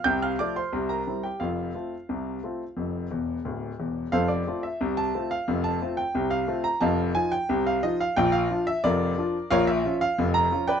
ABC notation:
X:1
M:2/4
L:1/16
Q:1/4=89
K:F
V:1 name="Grand piano"
[gg'] [ff'] [dd'] [cc']2 [Bb]2 [Gg] | [Ff]8- | [Ff]4 z4 | [Acf] d2 e2 a2 f- |
f a2 g2 f2 b | [_efa]2 _a g2 f e f | g f2 e [FBd]4 | [B_df] e2 f2 b2 [=B=dg] |]
V:2 name="Grand piano" clef=bass
[C,,C,]2 [F,A,F]2 [C,,C,]2 [G,CE]2 | [F,,,F,,]2 [A,CF]2 [C,,C,]2 [A,CF]2 | [F,,,F,,]2 [E,,,E,,]2 [D,,,D,,]2 [E,,,E,,]2 | [F,,,F,,]2 [A,CF]2 [C,,C,]2 [A,CF]2 |
[F,,,F,,]2 [A,CF]2 [C,,C,]2 [A,CF]2 | [F,,,F,,]2 [F,_EF]2 [C,,C,]2 [F,EF]2 | [B,,,B,,]2 [F,DF]2 [F,,,F,,]2 [F,DF]2 | [B,,,B,,]2 [F,_DF]2 [F,,,F,,]2 [F,DF]2 |]